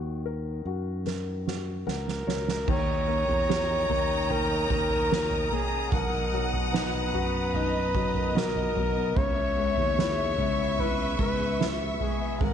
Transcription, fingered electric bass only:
Already playing: D#2
0.65 F#2
1.87 C#2
2.27 C#2
2.68 D#2
3.28 E2
3.90 D#2
4.70 D#2
5.92 B1
7.14 F#2
8.35 B1
8.76 B1
9.16 C#2
9.77 D#2
10.38 C#2
11.19 C#2
12.41 G#1

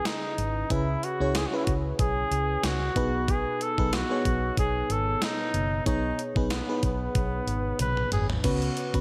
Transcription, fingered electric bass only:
0.38 G#1
0.71 C#2
1.20 C#2
1.67 C#2
1.99 B1
2.31 C#2
2.64 C#2
2.96 B1
3.78 B1
4.25 B1
4.58 B1
4.90 G#1
5.54 F#1
5.86 B1
6.36 B1
6.83 B1
7.15 B1
7.47 G#1
7.79 B1
8.12 G#1
8.44 C#2
8.94 C#2

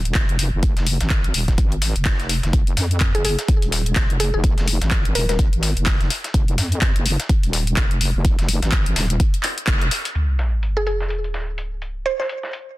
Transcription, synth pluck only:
3.15 G#4
3.25 G#4
4.20 G#4
4.34 G#4
5.15 A#4
5.29 A#4
10.77 G#4
10.87 G#4
12.06 C5
12.20 C5

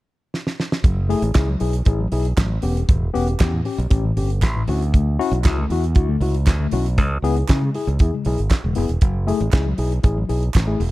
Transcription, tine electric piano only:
0.84 F#3
1.09 A3 E4 G#4
1.22 E4 G#4
1.35 E4 G#4
1.48 F#3
1.60 E4 G#4
1.86 E4 G#4
2.00 F#3
2.12 E4 G#4
2.38 F#3
2.63 B3 C#4 G4
2.76 C#4 G4
2.89 A2 E3
3.14 B3 C#4 G4
3.27 C#4 G4
3.40 C#4 G4
3.53 A2 E3
3.65 C#4 G4
3.90 C#4 G4
4.04 A2 E3
4.17 C#4 G4
4.43 C#4 G4
4.56 A2 E3
4.69 C#4 E4 F#4
4.95 D3 A3
5.19 C#4 E4 F#4
5.33 E4 F#4
5.45 E4 F#4
5.58 D3 A3
5.71 E4 F#4
5.96 E4 F#4
6.09 D3 A3
6.21 E4 F#4
6.47 E4 F#4
6.60 D3 A3
6.72 C#4 E4 F#4
6.98 C#3 G#3
7.24 B3 E4 G#4
7.36 E4 G#4
7.49 E4 G#4
7.62 C#3 G#3
7.75 E4 G#4
8.01 E4 G#4
8.14 C#3 G#3
8.26 E4 G#4
8.51 E4 G#4
8.64 C#3 G#3
8.76 B3 E4 G#4
9.02 F#3
9.27 A3 E4 G#4
9.40 E4 G#4
9.53 E4 G#4
9.66 F#3
9.78 E4 G#4
10.03 E4 G#4
10.17 F#3
10.29 E4 G#4
10.67 A3 E4 G#4

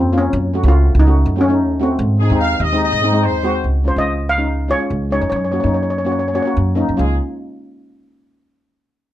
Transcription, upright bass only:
0.02 F2
0.33 F#2
0.63 C#2
0.95 C#2
1.26 F#2
1.67 D#2
1.99 G#2
2.30 D#2
2.60 D#2
2.92 G#2
3.33 D#2
3.64 C#2
3.96 C#2
4.90 C#2
5.22 F2
5.32 F#2
5.64 F#2
6.57 F#2
6.89 F#2
6.99 C#2

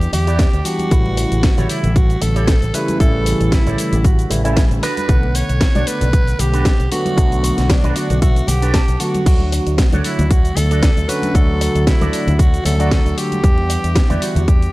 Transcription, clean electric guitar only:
0.13 muted clean electric guitar stroke
0.27 E4 G4 B4 D5
0.65 muted clean electric guitar stroke
1.17 muted clean electric guitar stroke
1.32 muted clean electric guitar stroke
1.57 E4 G4 A4 C#5
2.21 muted clean electric guitar stroke
2.35 E4 G4 A4 C#5
2.74 muted clean electric guitar stroke
3.26 muted clean electric guitar stroke
3.40 muted clean electric guitar stroke
3.66 E4 G4 A4 C#5
4.30 muted clean electric guitar stroke
4.44 E4 G4 A4 E5
4.82 D4 F#4 A4 B4
5.35 muted clean electric guitar stroke
5.49 muted clean electric guitar stroke
5.75 D4 F#4 A4 D5
6.39 muted clean electric guitar stroke
6.53 D4 F#4 A4 B4
6.91 muted clean electric guitar stroke
7.43 muted clean electric guitar stroke
7.58 muted clean electric guitar stroke
7.84 D4 F#4 A4 B4
7.96 D5
8.22 E5
8.48 F#5, muted clean electric guitar stroke
8.62 D4 F#4 A4 B4
8.74 A5
9.00 muted clean electric guitar stroke
9.52 muted clean electric guitar stroke
9.67 muted clean electric guitar stroke
9.93 D4 F#4 A4 C#5
10.56 muted clean electric guitar stroke
10.70 D4 F#4 A4 D5
11.09 muted clean electric guitar stroke
11.61 muted clean electric guitar stroke
11.75 muted clean electric guitar stroke
12.01 D4 F#4 A4 D5
12.65 muted clean electric guitar stroke
12.79 D4 F#4 A4 D5
13.17 muted clean electric guitar stroke
13.69 muted clean electric guitar stroke
13.84 muted clean electric guitar stroke
14.09 E4 G4 B4 D5

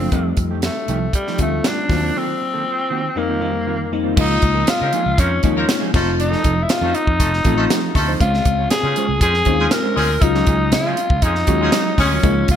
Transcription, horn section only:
4.80 F3 A#3 D#4 A#4
5.19 F3 A#3 D#4 A#4
5.56 F3 A#3 D#4 A#4
5.94 F3 A3 D#4 A4
6.83 F3 A3 D#4 A4
7.19 F3 A3 D#4 A4
7.57 F3 A3 D#4 A4
7.95 F3 A3 D#4 A4
8.83 F3 G#3 C#4 G#4
9.21 F3 G#3 C#4 G#4
9.59 F3 G#3 C#4 G#4
9.96 F3 G#3 C#4 G#4
10.85 F3 G#3 C#4 G#4
11.23 F3 G#3 C#4 G#4
11.61 F3 G#3 C#4 G#4
11.98 F3 G#3 C#4 G#4

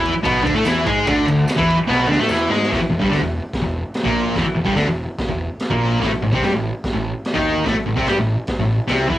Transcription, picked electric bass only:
Already playing: E2
0.25 B1
0.47 D2
0.55 A2
0.65 E2
0.86 G#2
1.07 D2
1.29 D2
1.59 E2
1.89 B1
2.09 D2
2.20 A2
2.29 E2
2.50 G#2
2.72 E1
2.80 muted picked electric bass stroke
2.91 E1
3.03 G1
3.12 D2
3.21 E1
3.62 E1
4.05 A#1
4.36 E1
4.45 muted picked electric bass stroke
4.55 E1
4.67 G1
4.76 D2
4.87 E1
5.28 E1
5.71 A#1
6.01 A1
6.12 muted picked electric bass stroke
6.22 A1
6.33 C2
6.42 G2
6.52 A1
6.94 A1
7.36 D#2
7.67 A1
7.78 muted picked electric bass stroke
7.88 A1
7.97 C2
8.08 G2
8.18 A1
8.59 A1
8.90 C2
9.10 E2

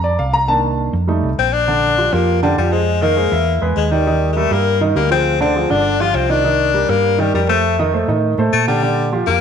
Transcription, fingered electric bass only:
Already playing: F2
0.19 C2
0.93 F2
1.23 C2
1.38 A#1
2.13 F2
2.58 F2
3.32 E2
3.62 E2
3.76 D#2
4.51 G2
4.96 D2
5.70 G1
6.14 C2
6.89 G2
7.34 F2
8.08 A2
8.38 A2
8.53 A#2
9.27 F2

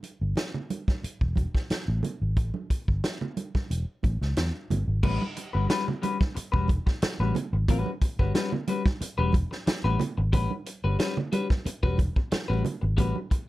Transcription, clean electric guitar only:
5.03 G3 C#4 F#4 B4
5.36 muted clean electric guitar stroke
5.53 G3 C#4 F#4 B4
5.69 G3 C#4 F#4 B4
5.87 muted clean electric guitar stroke
6.02 G3 C#4 F#4 B4
6.20 muted clean electric guitar stroke
6.34 muted clean electric guitar stroke
6.52 G3 C#4 F#4 B4
6.68 muted clean electric guitar stroke
6.86 muted clean electric guitar stroke
7.02 muted clean electric guitar stroke
7.20 G3 C#4 F#4 B4
7.36 muted clean electric guitar stroke
7.53 muted clean electric guitar stroke
7.69 G3 C#4 F#4 B4
8.02 muted clean electric guitar stroke
8.19 G3 C#4 F#4 B4
8.34 G3 C#4 F#4 B4
8.52 muted clean electric guitar stroke
8.68 G3 C#4 F#4 B4
8.86 muted clean electric guitar stroke
9.01 muted clean electric guitar stroke
9.18 G3 C#4 F#4 B4
9.34 muted clean electric guitar stroke
9.51 muted clean electric guitar stroke
9.66 muted clean electric guitar stroke
9.84 G3 C#4 F#4 B4
10.00 muted clean electric guitar stroke
10.18 muted clean electric guitar stroke
10.33 G3 C#4 F#4 B4
10.66 muted clean electric guitar stroke
10.84 G3 C#4 F#4 B4
10.99 G3 C#4 F#4 B4
11.17 muted clean electric guitar stroke
11.32 G3 C#4 F#4 B4
11.51 muted clean electric guitar stroke
11.66 muted clean electric guitar stroke
11.83 G3 C#4 F#4 B4
11.98 muted clean electric guitar stroke
12.16 muted clean electric guitar stroke
12.32 muted clean electric guitar stroke
12.48 G3 C#4 F#4 B4
12.64 muted clean electric guitar stroke
12.81 muted clean electric guitar stroke
12.97 G3 C#4 F#4 B4
13.31 muted clean electric guitar stroke

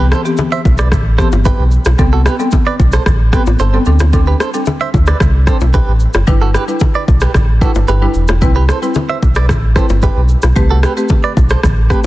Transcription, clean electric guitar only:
0.11 A4 C5
0.52 C5 E5
0.79 B4 D5
1.18 A4 C5
1.45 G4 B4
2.13 F#4 A4
2.26 G4 B4
2.67 B4 D5
2.93 A4 C5
3.33 G4 B4
3.60 A4 C5
4.27 G4 B4
4.40 A4 C5
4.81 C5 E5
5.08 B4 D5
5.47 A4 C5
5.74 G4 B4
6.42 F#4 A4
6.55 G4 B4
6.95 B4 D5
7.22 G4 B4
7.62 F#4 A4
7.88 G4 B4
8.56 G4 B4
8.69 A4 C5
9.09 C5 E5
9.36 B4 D5
9.76 A4 C5
10.03 G4 B4
10.71 F#4 A4
10.83 G4 B4
11.24 B4 D5
11.51 A4 C5
11.90 G4 B4

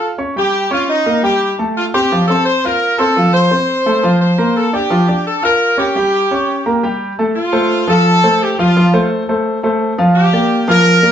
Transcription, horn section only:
0.38 G4
0.72 F4
0.89 D#4
1.24 G4
1.77 F4
1.94 G4
2.28 A4
2.45 C5
2.65 A#4
2.99 A4
3.33 C5
4.21 C5
4.57 A4
4.74 G4
5.26 A4
5.45 A#4
5.79 G4
7.36 F4
7.89 A4
8.43 G4
8.60 F4
10.15 G4
10.69 A#4

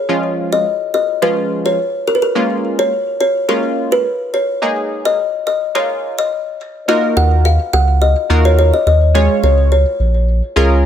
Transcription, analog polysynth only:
0.09 F3 G#3 C#4 F4
1.22 F3 G#3 C#4 F4
2.35 G#3 A#3 C#4 F4
3.48 G#3 A#3 C#4 F4
4.62 G#3 A#3 D#4 G#4
5.75 G#3 A#3 D#4 F4
6.88 A#3 D#4 F4 F#4 A#4
8.30 A#3 D#4 F4 F#4 A#4
9.15 G#3 C#4 F4 G#4 C#5
10.56 G#3 C#4 F4 G#4 A#4

